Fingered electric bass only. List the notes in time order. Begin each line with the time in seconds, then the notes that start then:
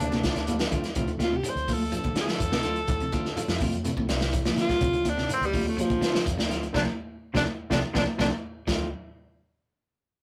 0.00 D2
0.36 D2
0.72 D3
0.96 D2
1.19 D2
1.55 D2
2.04 D3
2.16 D3
2.40 F2
2.52 D2
2.88 D2
3.12 D3
3.48 F2
3.97 D2
4.09 C2
4.57 D3
4.81 D2
5.05 D2
5.41 D2
5.90 D3
6.01 D3
6.26 F2
6.38 D2
6.74 D2
7.35 D2
7.71 D2
7.95 D2
8.19 D2
8.67 D2